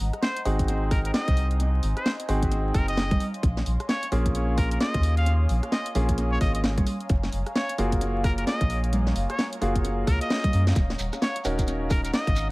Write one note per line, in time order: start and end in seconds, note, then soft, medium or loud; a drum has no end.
0.00 0.11 G#1 medium
0.00 3.17 C5 medium
0.00 3.17 D#5 medium
0.00 1.33 F#5 medium
0.00 3.16 A#5 medium
0.00 open hi-hat loud
0.13 cross-stick soft
0.13 closed hi-hat soft
0.22 0.41 C5 medium
0.22 snare loud
0.36 closed hi-hat medium
0.45 1.11 G#1 medium
0.45 2.26 C4 medium
0.45 2.26 D#4 medium
0.45 2.26 F#4 medium
0.45 2.26 G#4 medium
0.45 open hi-hat loud
0.59 kick medium
0.59 closed hi-hat medium
0.68 closed hi-hat medium
0.91 1.00 A#4 medium
0.91 kick loud
0.91 cross-stick medium
0.91 open hi-hat loud
1.05 1.11 A#4 medium
1.05 closed hi-hat medium
1.14 1.48 D#5 medium
1.14 snare loud
1.14 open hi-hat medium
1.28 1.80 C2 loud
1.28 kick loud
1.28 closed hi-hat soft
1.37 3.18 G#5 medium
1.37 open hi-hat loud
1.51 closed hi-hat soft
1.60 closed hi-hat medium
1.83 1.94 G#1 medium
1.83 open hi-hat loud
1.97 2.13 C5 medium
1.97 cross-stick soft
1.97 closed hi-hat soft
2.06 snare loud
2.20 closed hi-hat medium
2.29 2.72 G#1 medium
2.29 3.19 C4 medium
2.29 3.19 D#4 medium
2.29 3.19 F#4 medium
2.29 3.19 G#4 medium
2.29 open hi-hat loud
2.42 kick medium
2.42 closed hi-hat medium
2.52 closed hi-hat medium
2.74 3.17 F#1 medium
2.74 2.86 A#4 medium
2.74 kick loud
2.74 cross-stick medium
2.74 open hi-hat loud
2.88 3.26 D#5 loud
2.88 closed hi-hat medium
2.97 snare loud
3.11 kick loud
3.11 closed hi-hat soft
3.11 high conga medium
3.20 12.51 C#5 medium
3.20 12.51 F5 medium
3.20 10.72 G#5 medium
3.20 6.83 C6 medium
3.20 open hi-hat loud
3.34 closed hi-hat soft
3.43 3.62 A#1 medium
3.43 kick loud
3.43 closed hi-hat medium
3.57 snare medium
3.66 3.77 A#1 medium
3.66 open hi-hat medium
3.80 cross-stick soft
3.80 closed hi-hat soft
3.89 4.08 C#5 medium
3.89 snare loud
4.03 closed hi-hat medium
4.12 4.78 A#1 medium
4.12 5.93 A#3 medium
4.12 5.93 C#4 medium
4.12 5.93 F4 medium
4.12 5.93 G#4 medium
4.12 open hi-hat loud
4.26 kick medium
4.26 closed hi-hat medium
4.35 closed hi-hat medium
4.58 4.67 A#4 medium
4.58 kick loud
4.58 cross-stick medium
4.58 open hi-hat loud
4.71 4.77 A#4 medium
4.71 closed hi-hat medium
4.80 5.14 D#5 medium
4.80 snare loud
4.80 open hi-hat medium
4.94 5.46 D#2 loud
4.94 kick loud
4.94 closed hi-hat medium
5.03 open hi-hat loud
5.17 5.34 F5 medium
5.17 closed hi-hat soft
5.26 closed hi-hat medium
5.49 5.60 A#1 medium
5.49 open hi-hat loud
5.63 cross-stick soft
5.63 closed hi-hat soft
5.72 5.91 D#5 medium
5.72 snare loud
5.86 closed hi-hat medium
5.95 6.38 A#1 medium
5.95 6.86 A#3 medium
5.95 6.86 C#4 medium
5.95 6.86 F4 medium
5.95 6.86 G#4 medium
5.95 open hi-hat loud
6.09 kick medium
6.09 closed hi-hat medium
6.18 closed hi-hat medium
6.32 6.39 C#5 medium
6.41 6.84 G#1 medium
6.41 6.50 D#5 medium
6.41 kick loud
6.41 cross-stick medium
6.41 open hi-hat loud
6.55 6.61 D#5 medium
6.55 closed hi-hat medium
6.64 snare loud
6.78 kick loud
6.78 closed hi-hat medium
6.78 high conga medium
6.87 12.51 A#5 medium
6.87 open hi-hat loud
7.00 closed hi-hat soft
7.09 7.29 F#1 loud
7.09 kick loud
7.09 closed hi-hat medium
7.23 snare medium
7.32 7.44 F#1 medium
7.32 open hi-hat loud
7.46 cross-stick soft
7.46 closed hi-hat soft
7.55 7.74 C#5 medium
7.55 snare loud
7.69 closed hi-hat medium
7.78 8.44 F#1 medium
7.78 9.59 A#3 medium
7.78 9.59 F4 medium
7.78 9.59 F#4 medium
7.78 9.59 G#4 medium
7.78 open hi-hat loud
7.92 kick medium
7.92 closed hi-hat medium
8.01 closed hi-hat medium
8.24 8.33 A#4 medium
8.24 kick loud
8.24 cross-stick medium
8.24 open hi-hat loud
8.38 8.44 A#4 medium
8.38 closed hi-hat medium
8.47 8.81 D#5 medium
8.47 snare loud
8.47 open hi-hat medium
8.61 9.13 A#1 loud
8.61 kick loud
8.61 closed hi-hat medium
8.70 open hi-hat loud
8.84 closed hi-hat soft
8.93 closed hi-hat medium
8.93 high conga medium
9.07 snare medium
9.16 9.27 F#1 medium
9.16 open hi-hat loud
9.30 9.46 C#5 medium
9.30 cross-stick medium
9.30 closed hi-hat soft
9.39 snare loud
9.53 closed hi-hat medium
9.61 10.04 F#1 medium
9.61 10.75 A#3 medium
9.61 10.75 F4 medium
9.61 10.75 F#4 medium
9.61 10.75 G#4 medium
9.61 open hi-hat loud
9.75 kick medium
9.75 closed hi-hat medium
9.85 closed hi-hat medium
10.07 10.18 C#2 loud
10.07 10.19 A#4 medium
10.07 kick loud
10.07 cross-stick medium
10.07 open hi-hat loud
10.21 10.67 D#5 loud
10.21 closed hi-hat medium
10.30 snare loud
10.44 kick loud
10.44 closed hi-hat medium
10.44 high conga medium
10.53 10.72 F#2 loud
10.53 open hi-hat loud
10.67 snare medium
10.67 open hi-hat medium
10.75 10.95 D#1 loud
10.75 12.51 F#5 medium
10.75 kick loud
10.75 closed hi-hat medium
10.75 shekere soft
10.90 snare medium
10.99 11.10 D#1 medium
10.99 open hi-hat loud
10.99 shekere medium
11.13 cross-stick medium
11.13 closed hi-hat soft
11.13 shekere medium
11.22 11.40 C#5 medium
11.22 snare loud
11.22 shekere soft
11.36 closed hi-hat medium
11.45 12.10 D#1 medium
11.45 12.51 C#4 medium
11.45 12.51 D#4 medium
11.45 12.51 F#4 medium
11.45 12.51 A#4 medium
11.45 open hi-hat loud
11.45 shekere loud
11.58 kick medium
11.58 closed hi-hat medium
11.58 shekere soft
11.67 closed hi-hat medium
11.67 shekere soft
11.90 11.99 A#4 medium
11.90 kick loud
11.90 cross-stick medium
11.90 open hi-hat loud
11.90 shekere medium
12.04 12.10 A#4 medium
12.04 closed hi-hat medium
12.04 shekere soft
12.13 12.47 D#5 medium
12.13 snare loud
12.13 open hi-hat medium
12.13 shekere soft
12.27 12.51 G#1 loud
12.27 kick loud
12.27 closed hi-hat medium
12.36 open hi-hat loud
12.36 shekere loud